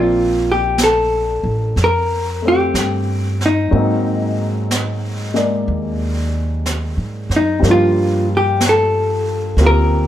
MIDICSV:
0, 0, Header, 1, 5, 480
1, 0, Start_track
1, 0, Key_signature, -2, "major"
1, 0, Tempo, 978793
1, 1830, Time_signature, 4, 2, 24, 8
1, 4939, End_track
2, 0, Start_track
2, 0, Title_t, "Hollow-body jazz guitar"
2, 0, Program_c, 0, 26
2, 0, Note_on_c, 0, 65, 61
2, 246, Note_off_c, 0, 65, 0
2, 253, Note_on_c, 0, 67, 65
2, 405, Note_off_c, 0, 67, 0
2, 410, Note_on_c, 0, 69, 62
2, 895, Note_off_c, 0, 69, 0
2, 902, Note_on_c, 0, 70, 67
2, 1213, Note_off_c, 0, 70, 0
2, 1217, Note_on_c, 0, 67, 60
2, 1695, Note_on_c, 0, 63, 56
2, 1696, Note_off_c, 0, 67, 0
2, 3606, Note_off_c, 0, 63, 0
2, 3611, Note_on_c, 0, 63, 60
2, 3748, Note_off_c, 0, 63, 0
2, 3782, Note_on_c, 0, 65, 69
2, 4060, Note_off_c, 0, 65, 0
2, 4104, Note_on_c, 0, 67, 65
2, 4233, Note_off_c, 0, 67, 0
2, 4263, Note_on_c, 0, 69, 63
2, 4734, Note_off_c, 0, 69, 0
2, 4740, Note_on_c, 0, 70, 77
2, 4939, Note_off_c, 0, 70, 0
2, 4939, End_track
3, 0, Start_track
3, 0, Title_t, "Grand piano"
3, 0, Program_c, 1, 0
3, 0, Control_c, 1, 64, 127
3, 0, Note_on_c, 1, 53, 36
3, 0, Note_on_c, 1, 58, 37
3, 0, Note_on_c, 1, 60, 35
3, 0, Note_on_c, 1, 74, 41
3, 1187, Note_on_c, 1, 57, 31
3, 1197, Note_off_c, 1, 60, 0
3, 1204, Note_on_c, 1, 60, 34
3, 1820, Note_on_c, 1, 54, 38
3, 1821, Note_off_c, 1, 58, 0
3, 1821, Note_on_c, 1, 56, 39
3, 1826, Note_off_c, 1, 53, 0
3, 1827, Note_off_c, 1, 60, 0
3, 1829, Note_off_c, 1, 57, 0
3, 1829, Note_on_c, 1, 58, 34
3, 1834, Note_on_c, 1, 60, 35
3, 1837, Control_c, 1, 64, 0
3, 1838, Note_off_c, 1, 74, 0
3, 1840, Note_on_c, 1, 63, 43
3, 1909, Control_c, 1, 64, 127
3, 2611, Note_off_c, 1, 56, 0
3, 2618, Note_on_c, 1, 56, 30
3, 2620, Note_off_c, 1, 58, 0
3, 2627, Note_on_c, 1, 58, 30
3, 2633, Note_on_c, 1, 74, 35
3, 3725, Note_on_c, 1, 55, 35
3, 3734, Note_on_c, 1, 53, 31
3, 3738, Note_off_c, 1, 54, 0
3, 3738, Note_off_c, 1, 56, 0
3, 3740, Note_off_c, 1, 58, 0
3, 3745, Note_off_c, 1, 60, 0
3, 3745, Note_off_c, 1, 74, 0
3, 3748, Note_off_c, 1, 63, 0
3, 3748, Note_on_c, 1, 58, 32
3, 3749, Control_c, 1, 64, 0
3, 3765, Note_on_c, 1, 62, 34
3, 3777, Note_on_c, 1, 65, 44
3, 3842, Control_c, 1, 64, 127
3, 4694, Note_off_c, 1, 58, 0
3, 4701, Note_on_c, 1, 58, 36
3, 4704, Note_on_c, 1, 60, 32
3, 4705, Note_off_c, 1, 65, 0
3, 4712, Note_on_c, 1, 65, 30
3, 4712, Note_on_c, 1, 67, 40
3, 4939, Note_off_c, 1, 53, 0
3, 4939, Note_off_c, 1, 55, 0
3, 4939, Note_off_c, 1, 58, 0
3, 4939, Note_off_c, 1, 60, 0
3, 4939, Note_off_c, 1, 62, 0
3, 4939, Note_off_c, 1, 65, 0
3, 4939, Note_off_c, 1, 67, 0
3, 4939, End_track
4, 0, Start_track
4, 0, Title_t, "Upright bass"
4, 0, Program_c, 2, 32
4, 0, Note_on_c, 2, 34, 61
4, 685, Note_off_c, 2, 34, 0
4, 704, Note_on_c, 2, 33, 52
4, 856, Note_off_c, 2, 33, 0
4, 864, Note_on_c, 2, 41, 57
4, 1328, Note_off_c, 2, 41, 0
4, 1344, Note_on_c, 2, 43, 55
4, 1807, Note_off_c, 2, 43, 0
4, 1827, Note_on_c, 2, 44, 64
4, 2767, Note_off_c, 2, 44, 0
4, 2784, Note_on_c, 2, 39, 60
4, 3403, Note_off_c, 2, 39, 0
4, 3419, Note_on_c, 2, 44, 45
4, 3569, Note_off_c, 2, 44, 0
4, 3578, Note_on_c, 2, 42, 50
4, 3729, Note_off_c, 2, 42, 0
4, 3739, Note_on_c, 2, 43, 62
4, 4678, Note_off_c, 2, 43, 0
4, 4692, Note_on_c, 2, 38, 64
4, 4939, Note_off_c, 2, 38, 0
4, 4939, End_track
5, 0, Start_track
5, 0, Title_t, "Drums"
5, 383, Note_on_c, 9, 25, 25
5, 383, Note_on_c, 9, 38, 34
5, 383, Note_on_c, 9, 44, 42
5, 432, Note_off_c, 9, 38, 0
5, 432, Note_off_c, 9, 44, 0
5, 868, Note_off_c, 9, 25, 0
5, 868, Note_on_c, 9, 25, 31
5, 868, Note_on_c, 9, 38, 22
5, 917, Note_off_c, 9, 38, 0
5, 1348, Note_off_c, 9, 25, 0
5, 1348, Note_on_c, 9, 25, 27
5, 1348, Note_on_c, 9, 38, 34
5, 1348, Note_on_c, 9, 44, 35
5, 1397, Note_off_c, 9, 38, 0
5, 1397, Note_off_c, 9, 44, 0
5, 1671, Note_on_c, 9, 38, 21
5, 1720, Note_off_c, 9, 38, 0
5, 1828, Note_off_c, 9, 25, 0
5, 1828, Note_on_c, 9, 25, 26
5, 2308, Note_off_c, 9, 25, 0
5, 2308, Note_on_c, 9, 25, 28
5, 2308, Note_on_c, 9, 38, 35
5, 2308, Note_on_c, 9, 44, 39
5, 2357, Note_off_c, 9, 38, 0
5, 2357, Note_off_c, 9, 44, 0
5, 2627, Note_on_c, 9, 38, 21
5, 2677, Note_off_c, 9, 38, 0
5, 2788, Note_off_c, 9, 25, 0
5, 2788, Note_on_c, 9, 25, 30
5, 3265, Note_off_c, 9, 25, 0
5, 3265, Note_on_c, 9, 25, 23
5, 3265, Note_on_c, 9, 38, 32
5, 3265, Note_on_c, 9, 44, 38
5, 3314, Note_off_c, 9, 38, 0
5, 3314, Note_off_c, 9, 44, 0
5, 3584, Note_on_c, 9, 38, 22
5, 3633, Note_off_c, 9, 38, 0
5, 3743, Note_off_c, 9, 25, 0
5, 3743, Note_on_c, 9, 25, 26
5, 3743, Note_on_c, 9, 38, 24
5, 3792, Note_off_c, 9, 38, 0
5, 4220, Note_off_c, 9, 25, 0
5, 4220, Note_on_c, 9, 25, 33
5, 4220, Note_on_c, 9, 38, 38
5, 4220, Note_on_c, 9, 44, 41
5, 4269, Note_off_c, 9, 38, 0
5, 4269, Note_off_c, 9, 44, 0
5, 4697, Note_off_c, 9, 25, 0
5, 4697, Note_on_c, 9, 25, 27
5, 4697, Note_on_c, 9, 38, 25
5, 4746, Note_off_c, 9, 38, 0
5, 4939, Note_off_c, 9, 25, 0
5, 4939, End_track
0, 0, End_of_file